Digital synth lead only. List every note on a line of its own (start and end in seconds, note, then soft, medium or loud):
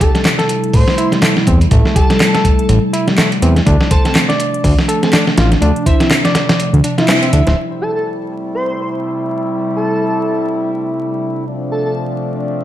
0.01 0.10 A4 medium
0.15 0.21 A4 medium
0.74 1.12 C5 medium
1.96 2.65 A4 loud
3.91 4.00 A4 medium
4.06 4.12 A4 medium
5.03 5.13 A4 medium
5.86 5.95 E4 medium
6.00 6.07 E4 medium
6.99 7.57 E4 medium
7.81 7.90 A4 medium
7.95 8.02 A4 medium
8.55 8.93 C5 medium
9.76 10.45 A4 medium
11.72 11.81 A4 medium
11.86 11.92 A4 medium